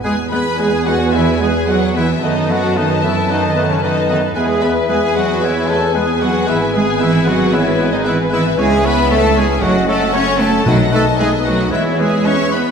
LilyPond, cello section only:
\new Staff \with { instrumentName = "Cello section" } { \clef bass \time 4/4 \key e \major \tempo 4 = 113 gis8 b8 gis8 fis8 e8 gis8 fis8 e8 | dis8 fis8 dis8 e8 dis8. cis16 dis8 dis8 | gis8 b8 gis8 fis8 e8 a8 gis8 fis8 | e8 gis8 e8 fis8 e8. dis16 e8 e8 |
gis8 b8 a8 gis8 fis8 a8 cis'8 a8 | fis8 a8 gis8 fis8 e8 gis8 cis'8 b8 | }